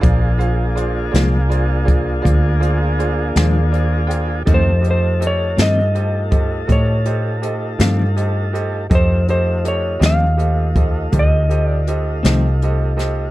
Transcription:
Already playing: F5
0.01 A#1 A#3 D4 F4 G#4 C5 D5, kick, closed hi-hat
0.37 F4 G#4 C5 F5, closed hi-hat
0.75 F4 G#4 C5 D5, closed hi-hat
1.11 C2 F4 G#4 C5 D5, closed hi-hat
1.15 A#2 F3 G#3 D4, snare
1.48 F4 G#4 C5 D5 D#5, closed hi-hat
1.84 F4 G#4 C5 D5, kick, closed hi-hat
2.22 D2 F4 G#4 C5 D5, kick
2.26 closed hi-hat
2.60 F4 G#4 C5 D5, closed hi-hat
2.98 F4 G#4 C5 D5, closed hi-hat
3.36 D#2 A#2 F3 G#3 D4 F4 G#4 C5 D5, snare, closed hi-hat
3.72 F4 G#4 C5 D5, closed hi-hat
4.07 F4 G#4 C5 D5 G5, closed hi-hat
4.45 F2 D#3 A3 C4 D#4 F4 G4 A4 C5 D#5, kick, closed hi-hat
4.54 C5
4.81 G4 A4 C5 D#5, closed hi-hat
4.91 C5
5.19 G4 A4 C5 D#5, closed hi-hat
5.27 C#5
5.57 F2 G2 D#3 A3 C4 G4 A4 C5 D#5, snare, closed hi-hat
5.62 D#5
5.95 G4 A4 C5 D#5, closed hi-hat
6.31 G4 A4 C5 D#5, kick, closed hi-hat
6.66 A2 G4 A4 C5 D#5, kick, closed hi-hat
6.72 C#5
7.05 G4 A4 C5 D#5, closed hi-hat
7.42 G4 A4 C5 D#5, closed hi-hat
7.78 F2 G2 D#3 A3 C4 G4 A4 C5 F5, snare, closed hi-hat
8.16 G4 A4 C5 D#5, closed hi-hat
8.53 G4 A4 C5 D#5, closed hi-hat
8.90 F2 A3 D#4 F4 G4 A4 C5 D#5, kick, closed hi-hat
8.95 C5
9.28 G4 A4 C5 D#5, closed hi-hat
9.64 G4 A4 C5 D#5, closed hi-hat
9.68 C#5
9.99 D#2 F2 D#3 A3 C4 G4 A4 C5 D#5, snare, closed hi-hat
10.06 F5
10.37 G4 A4 C5 D#5, closed hi-hat
10.75 G4 A4 C5 D#5, kick, closed hi-hat
11.12 D2 G4 A4 C5 D#5, kick, closed hi-hat
11.19 D#5
11.49 G4 A4 C5 D#5, closed hi-hat
11.66 D5
11.87 G4 A4 C5 D#5, closed hi-hat
12.23 C2 F2 D#3 A3 C4 G4 A4 C5 D#5, snare, closed hi-hat
12.62 G4 A4 C5 D#5, closed hi-hat
12.97 G4 A4 C5 D#5, snare, closed hi-hat

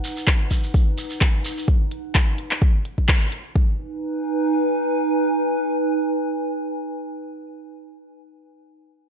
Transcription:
Already playing: D#4 B4 F#5
0.04 closed hi-hat, shekere
0.17 shekere
0.27 kick, clap, shekere
0.51 kick, closed hi-hat, shekere
0.64 closed hi-hat, shekere
0.74 kick, shekere
0.98 closed hi-hat, shekere
1.10 shekere
1.21 kick, clap, shekere
1.45 closed hi-hat, shekere
1.57 shekere
1.68 kick
1.91 closed hi-hat
2.15 kick, clap
2.38 closed hi-hat
2.51 clap, closed hi-hat
2.62 kick
2.85 closed hi-hat
2.98 kick
3.09 kick, clap
3.32 closed hi-hat
3.56 D#4, kick
3.63 B4
3.71 G#5

